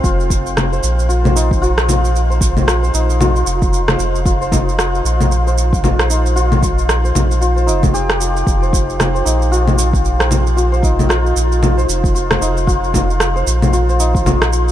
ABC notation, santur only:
X:1
M:4/4
L:1/16
Q:"Swing 16ths" 1/4=114
K:Cm
V:1 name="Santur"
F z4 c3 F c E2 F z3 | z c3 F c E2 F z4 c3 | F c E2 F z4 c3 F c E2 | F z4 c3 F c E z G z F z |
z c3 F c E2 F z4 c3 | F c E2 F z4 c3 F c E2 | F z4 c3 F c E2 F z3 |]